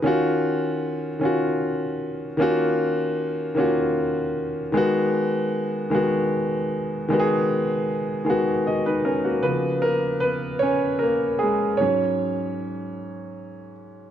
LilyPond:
<<
  \new Staff \with { instrumentName = "Grand piano" } { \time 6/8 \key aes \dorian \tempo 4. = 51 << { <ees des' f' ges'>4. <ees des' f' ges'>4. | <ees bes des' f' ges'>4. <ees bes des' f' ges'>4. | <ees aes ces' ges'>4. <ees aes ces' ges'>4. | <ees aes ces' ges' aes'>4. <ees aes ces' ges'>4. |
<ces' ces''>8 <bes bes'>8 <ces' ces''>8 <des' des''>8 <bes bes'>8 <aes aes'>8 | <des' des''>2~ <des' des''>8 r8 | } \\ { r2. | r2. | r2. | r2 <ges' ees''>16 <ees' ces''>16 <des' bes'>16 <bes ges'>16~ |
<bes ges'>16 r2 r8. | r2. | } >> }
  \new Staff \with { instrumentName = "Grand piano" } { \clef bass \time 6/8 \key aes \dorian r2. | r2. | r2. | r2. |
<des f>2. | <aes, ges>2. | }
>>